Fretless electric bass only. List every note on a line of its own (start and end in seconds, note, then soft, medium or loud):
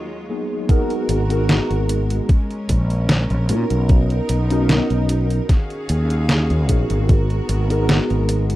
1.09 1.59 G#1 loud
1.71 2.19 G#1 medium
2.69 3.30 A#1 loud
3.31 3.51 A#1 loud
3.49 3.63 A#2 medium
3.71 4.19 B1 loud
4.29 4.79 B1 loud
4.91 5.39 B1 medium
5.90 6.50 D#2 loud
6.51 6.69 D#2 loud
6.69 6.83 A#1 loud
6.90 7.39 G#1 loud
7.49 7.99 G#1 loud
8.11 8.56 G#1 medium